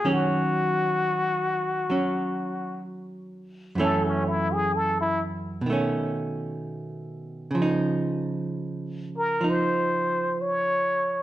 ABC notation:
X:1
M:4/4
L:1/16
Q:"Swing" 1/4=64
K:Ebdor
V:1 name="Muted trumpet"
G12 z4 | =A D _F _A =A F z8 z2 | z6 B2 c4 d4 |]
V:2 name="Hollow-body jazz guitar" clef=bass
[E,G,D]8 [G,D]8 | [G,,_F,=A,D]8 [=B,,^D,A,^C]8 | [D,F,E]8 [F,E]8 |]